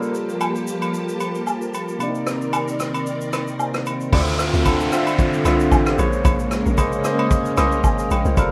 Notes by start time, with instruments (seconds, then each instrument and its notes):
Already playing: string machine F3 A#3 G4 A5, tine electric piano G3 F4 A4 A#4
0.03 shaker
0.14 shaker
0.29 shaker
0.41 high agogo, low woodblock, shaker
0.56 shaker
0.67 shaker
0.82 high agogo, shaker
0.94 shaker
1.09 shaker
1.20 high agogo, shaker
1.35 shaker
1.47 low woodblock, shaker
1.62 shaker
1.74 high agogo, shaker
1.88 shaker
1.99 tine electric piano C3 A#3 D4, string machine D#3 C4 A#4 D5, high agogo, shaker
2.03 tine electric piano D5
2.08 tine electric piano D#4
2.15 shaker
2.27 cross-stick, shaker
2.42 shaker
2.53 high agogo, low woodblock, shaker
2.68 shaker
2.80 cross-stick, shaker
2.94 high agogo, shaker
3.07 shaker
3.21 shaker
3.33 cross-stick, high agogo, shaker
3.48 shaker
3.59 tine electric piano C3 A#3 D#4 C5, low woodblock, shaker
3.74 cross-stick, shaker
3.86 high agogo, shaker
4.01 shaker
4.12 log drum bass D2, tine electric piano D3 C4 F4 D5, string machine D3 C4 F4 E5, kick, crash, downlifter, high agogo
4.20 tine electric piano E5
4.27 shaker
4.39 cross-stick, shaker
4.54 log drum bass D2, shaker
4.65 tine electric piano D3 C4 F4 A4, kick, high agogo, shaker
4.80 shaker
4.92 tine electric piano D3 C4 F4 E5, cross-stick, shaker
5.07 high agogo, shaker
5.19 kick, shaker
5.33 shaker
5.45 log drum bass C2, tine electric piano D3 C4 F4 E5, cross-stick, high agogo, shaker
5.60 shaker
5.72 log drum bass A1, kick, low woodblock, shaker
5.86 tine electric piano D3 C4 F4 G4, cross-stick, shaker
5.98 log drum bass A#1, string machine C#3 G#3 A#3 C#4, tine electric piano A#3 G#4 C5 C#5, high agogo, shaker
6.13 shaker
6.25 log drum bass A#1, kick, high agogo, shaker
6.39 shaker
6.51 cross-stick, shaker
6.66 log drum bass A#1, shaker
6.77 tine electric piano A#3 G#4 C5 D#5, kick, high agogo, shaker
6.93 shaker
7.04 tine electric piano A#3 G#4 C5 D#5, cross-stick, shaker
7.19 high agogo
7.31 kick, shaker
7.45 shaker
7.57 log drum bass C2, tine electric piano A#3 G#4 C5 D#5, cross-stick, high agogo, shaker
7.72 shaker
7.84 log drum bass G#1, tine electric piano A#4 D#5, kick, low woodblock, shaker
7.99 tine electric piano D#5 G#5, shaker
8.11 log drum bass A#1, tine electric piano C#5 G5, high agogo, shaker
8.25 log drum bass C2, tine electric piano C5 F5, shaker
8.37 log drum bass G1, string machine F3 G3 A#3 G4, tine electric piano G3 F4 A4 A#4, kick, high agogo, shaker